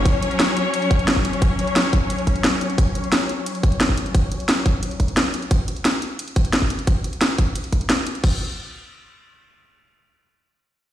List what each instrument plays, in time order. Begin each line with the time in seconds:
Already playing: string section F#3 C#4 C#5
0.05 kick, closed hi-hat
0.23 closed hi-hat
0.31 closed hi-hat
0.40 snare, closed hi-hat
0.57 closed hi-hat
0.74 closed hi-hat
0.82 closed hi-hat
0.91 kick, closed hi-hat
0.99 closed hi-hat
1.08 snare, closed hi-hat
1.16 kick
1.25 closed hi-hat
1.33 closed hi-hat
1.42 kick, closed hi-hat
1.59 closed hi-hat
1.67 closed hi-hat
1.76 snare, closed hi-hat
1.93 kick, closed hi-hat
2.10 closed hi-hat
2.19 closed hi-hat
2.27 kick, closed hi-hat
2.36 closed hi-hat
2.44 snare, closed hi-hat
2.61 closed hi-hat
2.70 closed hi-hat
2.78 kick, closed hi-hat
2.95 closed hi-hat
3.04 closed hi-hat
3.12 snare, closed hi-hat
3.29 closed hi-hat
3.46 closed hi-hat
3.55 closed hi-hat
3.63 kick, closed hi-hat
3.72 closed hi-hat
3.80 snare, closed hi-hat
3.89 kick
3.97 closed hi-hat
4.06 closed hi-hat
4.15 kick, closed hi-hat
4.32 closed hi-hat
4.40 closed hi-hat
4.49 snare, closed hi-hat
4.66 kick, closed hi-hat
4.83 closed hi-hat
4.91 closed hi-hat
5.00 kick, closed hi-hat
5.08 closed hi-hat
5.17 snare, closed hi-hat
5.34 closed hi-hat
5.42 closed hi-hat
5.51 kick, closed hi-hat
5.68 closed hi-hat
5.76 closed hi-hat
5.85 snare, closed hi-hat
6.02 closed hi-hat
6.19 closed hi-hat
6.28 closed hi-hat
6.36 kick, closed hi-hat
6.45 closed hi-hat
6.53 snare, closed hi-hat
6.62 kick
6.70 closed hi-hat
6.79 closed hi-hat
6.87 kick, closed hi-hat
7.04 closed hi-hat
7.13 closed hi-hat
7.21 snare, closed hi-hat
7.38 kick, closed hi-hat
7.55 closed hi-hat
7.64 closed hi-hat
7.72 kick, closed hi-hat
7.81 closed hi-hat
7.90 snare, closed hi-hat
8.07 closed hi-hat
8.15 closed hi-hat
8.24 kick, crash